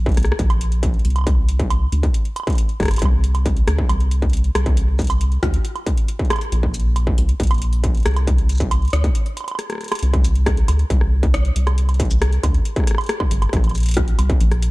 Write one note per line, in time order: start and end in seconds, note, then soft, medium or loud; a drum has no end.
0.00 0.12 A#1 loud
0.06 kick loud
0.06 closed hi-hat soft
0.09 closed hi-hat soft
0.12 closed hi-hat soft
0.14 cross-stick medium
0.14 closed hi-hat soft
0.17 0.33 C2 loud
0.17 closed hi-hat medium
0.20 closed hi-hat soft
0.23 cross-stick medium
0.23 closed hi-hat soft
0.25 closed hi-hat soft
0.32 cross-stick loud
0.39 1.00 A#1 loud
0.39 kick loud
0.39 closed hi-hat medium
0.50 closed hi-hat soft
0.50 high woodblock medium
0.61 closed hi-hat medium
0.72 closed hi-hat medium
0.83 kick loud
0.83 closed hi-hat medium
0.94 closed hi-hat soft
0.99 closed hi-hat soft
1.05 1.88 C2 medium
1.05 closed hi-hat medium
1.10 closed hi-hat soft
1.16 closed hi-hat medium
1.16 high woodblock soft
1.19 high woodblock soft
1.21 high woodblock soft
1.24 kick loud
1.24 closed hi-hat medium
1.24 high woodblock soft
1.35 high woodblock soft
1.49 closed hi-hat medium
1.60 kick loud
1.60 closed hi-hat soft
1.70 closed hi-hat medium
1.70 high woodblock medium
1.92 2.08 D2 loud
1.92 closed hi-hat medium
2.03 kick loud
2.03 closed hi-hat soft
2.14 closed hi-hat medium
2.25 closed hi-hat soft
2.36 closed hi-hat medium
2.36 high woodblock soft
2.40 high woodblock soft
2.43 kick loud
2.43 closed hi-hat soft
2.43 high woodblock soft
2.47 closed hi-hat soft
2.47 high woodblock soft
2.53 closed hi-hat soft
2.53 high woodblock soft
2.55 closed hi-hat soft
2.58 closed hi-hat medium
2.69 closed hi-hat soft
2.80 2.96 G1 loud
2.80 kick loud
2.80 cross-stick medium
2.80 closed hi-hat soft
2.83 cross-stick medium
2.83 closed hi-hat soft
2.85 cross-stick medium
2.85 closed hi-hat soft
2.88 cross-stick loud
2.88 closed hi-hat medium
2.91 closed hi-hat medium
2.91 high woodblock soft
2.94 closed hi-hat medium
2.96 closed hi-hat medium
2.96 high woodblock soft
2.99 closed hi-hat medium
3.02 3.63 C2 loud
3.02 kick loud
3.02 closed hi-hat medium
3.02 high woodblock medium
3.24 closed hi-hat medium
3.35 closed hi-hat soft
3.35 high woodblock soft
3.46 kick loud
3.46 closed hi-hat medium
3.57 closed hi-hat soft
3.68 3.84 D2 loud
3.68 cross-stick loud
3.68 closed hi-hat medium
3.79 kick loud
3.89 4.50 C2 medium
3.89 closed hi-hat medium
3.89 high woodblock medium
4.00 closed hi-hat soft
4.11 closed hi-hat medium
4.22 kick loud
4.22 closed hi-hat soft
4.30 closed hi-hat soft
4.33 closed hi-hat medium
4.37 closed hi-hat soft
4.44 closed hi-hat soft
4.55 5.38 C2 medium
4.55 cross-stick loud
4.55 closed hi-hat medium
4.55 high woodblock medium
4.66 kick loud
4.66 closed hi-hat soft
4.77 closed hi-hat medium
4.99 kick loud
4.99 closed hi-hat soft
4.99 shaker medium
5.02 closed hi-hat soft
5.04 closed hi-hat soft
5.07 closed hi-hat medium
5.10 closed hi-hat medium
5.10 high woodblock medium
5.10 shaker medium
5.21 closed hi-hat medium
5.32 closed hi-hat soft
5.43 5.59 D2 loud
5.43 kick loud
5.43 cross-stick loud
5.43 closed hi-hat medium
5.54 closed hi-hat medium
5.65 closed hi-hat medium
5.76 closed hi-hat soft
5.76 high woodblock soft
5.87 kick loud
5.87 closed hi-hat medium
5.97 closed hi-hat medium
6.08 closed hi-hat medium
6.19 kick loud
6.19 closed hi-hat soft
6.25 closed hi-hat soft
6.30 cross-stick loud
6.30 closed hi-hat medium
6.30 high woodblock medium
6.33 closed hi-hat soft
6.33 high woodblock medium
6.41 closed hi-hat soft
6.52 7.13 A#1 loud
6.52 closed hi-hat medium
6.63 kick loud
6.74 closed hi-hat medium
6.74 shaker medium
6.80 closed hi-hat soft
6.96 closed hi-hat medium
6.96 high woodblock medium
7.07 kick loud
7.18 7.34 C2 loud
7.18 closed hi-hat medium
7.29 closed hi-hat medium
7.40 8.01 A#1 loud
7.40 kick loud
7.40 closed hi-hat medium
7.43 closed hi-hat medium
7.47 closed hi-hat soft
7.51 closed hi-hat soft
7.51 high woodblock medium
7.54 closed hi-hat soft
7.58 closed hi-hat soft
7.62 closed hi-hat medium
7.73 closed hi-hat medium
7.84 kick loud
7.84 closed hi-hat medium
7.95 closed hi-hat soft
7.97 closed hi-hat soft
8.00 closed hi-hat soft
8.03 8.88 C2 medium
8.03 cross-stick loud
8.03 closed hi-hat soft
8.06 closed hi-hat medium
8.08 closed hi-hat soft
8.11 closed hi-hat soft
8.14 closed hi-hat soft
8.16 closed hi-hat medium
8.16 high woodblock medium
8.27 kick loud
8.27 closed hi-hat medium
8.38 closed hi-hat soft
8.49 closed hi-hat medium
8.49 shaker soft
8.52 shaker soft
8.55 shaker soft
8.58 kick loud
8.58 closed hi-hat medium
8.58 shaker medium
8.60 shaker medium
8.71 closed hi-hat medium
8.71 high woodblock medium
8.82 closed hi-hat soft
8.85 closed hi-hat soft
8.88 closed hi-hat soft
8.90 9.09 D2 loud
8.90 cross-stick loud
8.90 closed hi-hat soft
8.93 closed hi-hat medium
9.04 kick loud
9.04 closed hi-hat medium
9.15 closed hi-hat medium
9.26 closed hi-hat soft
9.37 closed hi-hat medium
9.37 high woodblock soft
9.41 high woodblock soft
9.44 closed hi-hat medium
9.44 high woodblock soft
9.48 high woodblock soft
9.51 high woodblock soft
9.55 cross-stick medium
9.55 closed hi-hat medium
9.55 high woodblock soft
9.70 cross-stick medium
9.70 closed hi-hat soft
9.72 cross-stick medium
9.75 cross-stick soft
9.78 cross-stick soft
9.81 cross-stick soft
9.81 closed hi-hat soft
9.83 cross-stick soft
9.83 closed hi-hat soft
9.86 cross-stick soft
9.86 closed hi-hat medium
9.89 cross-stick soft
9.92 cross-stick medium
9.92 closed hi-hat medium
9.92 high woodblock medium
9.95 closed hi-hat medium
9.99 closed hi-hat medium
10.03 10.64 C2 loud
10.03 closed hi-hat medium
10.14 kick loud
10.14 closed hi-hat soft
10.14 high woodblock soft
10.24 closed hi-hat medium
10.24 shaker medium
10.35 closed hi-hat soft
10.46 kick loud
10.46 cross-stick loud
10.46 closed hi-hat medium
10.57 closed hi-hat soft
10.68 10.84 D2 loud
10.68 closed hi-hat loud
10.68 high woodblock medium
10.79 closed hi-hat soft
10.90 11.51 C2 medium
10.90 kick loud
10.90 closed hi-hat medium
11.01 cross-stick medium
11.23 kick loud
11.23 closed hi-hat soft
11.34 cross-stick loud
11.34 closed hi-hat medium
11.45 closed hi-hat soft
11.56 12.39 C2 medium
11.56 closed hi-hat loud
11.67 cross-stick medium
11.67 closed hi-hat soft
11.67 high woodblock medium
11.78 closed hi-hat medium
11.89 closed hi-hat soft
11.89 high woodblock soft
11.94 closed hi-hat soft
12.00 kick loud
12.00 closed hi-hat medium
12.00 shaker medium
12.05 closed hi-hat soft
12.11 closed hi-hat soft
12.11 shaker medium
12.22 cross-stick loud
12.22 closed hi-hat medium
12.33 closed hi-hat soft
12.43 12.59 D2 loud
12.43 kick loud
12.43 closed hi-hat loud
12.43 high woodblock medium
12.54 closed hi-hat soft
12.65 closed hi-hat medium
12.76 kick loud
12.76 cross-stick soft
12.76 closed hi-hat soft
12.80 cross-stick soft
12.84 cross-stick soft
12.87 cross-stick soft
12.87 closed hi-hat loud
12.91 cross-stick medium
12.95 cross-stick medium
12.95 closed hi-hat soft
12.95 high woodblock medium
13.01 closed hi-hat soft
13.04 closed hi-hat soft
13.06 cross-stick loud
13.06 closed hi-hat soft
13.09 closed hi-hat medium
13.20 kick loud
13.20 high woodblock medium
13.31 13.47 G1 loud
13.31 closed hi-hat loud
13.42 cross-stick soft
13.42 closed hi-hat soft
13.42 high woodblock medium
13.49 14.14 A#1 loud
13.49 kick loud
13.49 cross-stick soft
13.49 closed hi-hat medium
13.57 cross-stick medium
13.64 closed hi-hat soft
13.64 high woodblock soft
13.68 closed hi-hat soft
13.68 high woodblock soft
13.71 closed hi-hat soft
13.71 high woodblock soft
13.71 shaker medium
13.78 closed hi-hat soft
13.80 closed hi-hat medium
13.83 closed hi-hat medium
13.86 closed hi-hat medium
13.89 closed hi-hat medium
13.91 closed hi-hat medium
13.94 cross-stick loud
13.94 closed hi-hat medium
13.97 kick loud
13.97 closed hi-hat medium
14.08 closed hi-hat soft
14.19 14.35 C2 loud
14.19 closed hi-hat loud
14.19 high woodblock medium
14.30 kick loud
14.30 closed hi-hat soft
14.41 14.71 A#1 loud
14.41 closed hi-hat medium
14.52 cross-stick medium
14.52 closed hi-hat soft
14.62 closed hi-hat loud